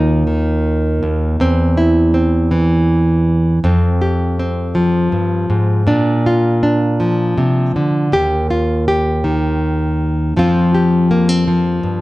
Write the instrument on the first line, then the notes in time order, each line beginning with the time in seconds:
nylon-string guitar
Already playing: D#2 D#3 A#3 D#4 F4
0.27 D#3
1.03 D#2
1.40 E2 C4
1.77 E4
2.14 C4
2.51 E3
3.64 F2 C4
4.02 G4
4.39 C4
4.75 F3
5.12 G2
5.50 G#2
5.87 A#2 D4
6.26 F4
6.63 D4
7.00 F3
7.38 C3
7.76 D3
8.12 D#2 G4
8.50 F4
8.88 G4
9.24 D#3
10.36 F2 F3 C4 F4
10.74 G4
11.11 A#3
11.29 C4
11.48 F3
11.83 G2